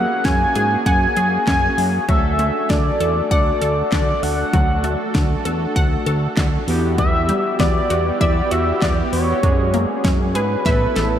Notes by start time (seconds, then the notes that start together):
Already playing: A#3 C#4 F#4 G#4 F#5
0.25 F#2 C#4 G#5, kick, snare, closed hi-hat
0.55 G#2 G#4, closed hi-hat
0.86 F#2 F#5 G#5, kick, closed hi-hat
1.17 F#2 G#4, closed hi-hat
1.47 F#2 C#4 G#5, kick, snare, clap, closed hi-hat
1.78 F#2, open hi-hat
2.08 D2 F#3 A3 D4 F#4 A4 E5, kick, closed hi-hat
2.39 A3, closed hi-hat
2.70 D2 D4 D5, kick, snare, closed hi-hat
3.00 E2 A4, closed hi-hat
3.31 D2 D5 F#5, kick, closed hi-hat
3.62 D2 A4, closed hi-hat
3.92 D2 D4 D5, kick, snare, clap, closed hi-hat
4.23 D2 F#5, open hi-hat
4.53 D2 F#3, kick, closed hi-hat
4.84 A3, closed hi-hat
5.15 D2 D4, kick, snare, closed hi-hat
5.45 E2 A4, closed hi-hat
5.76 D2 F#5, kick, closed hi-hat
6.06 D2 A4, closed hi-hat
6.37 D2 D4, kick, snare, clap, closed hi-hat
6.68 E2 B3 E4 F#4 G4, open hi-hat
6.98 E3 E5, kick, closed hi-hat
7.29 G3, closed hi-hat
7.60 E2 B3 D5, kick, snare, closed hi-hat
7.90 E2 F#4, closed hi-hat
8.21 E2 D5 E5, kick, closed hi-hat
8.51 E2 F#4 E5, closed hi-hat
8.82 E2 B3 D5, kick, snare, clap, closed hi-hat
9.13 E2 C#5, open hi-hat
9.43 F#2 F#3 G#3 C#4 F#4 G#4, kick, closed hi-hat
9.74 A#3, closed hi-hat
10.04 F#2 C#4, kick, snare, closed hi-hat
10.35 G#2 G#4 B4, closed hi-hat
10.66 A1 A3 B3 E4 A4 E5, kick, snare, closed hi-hat
10.96 A1 A4, snare, closed hi-hat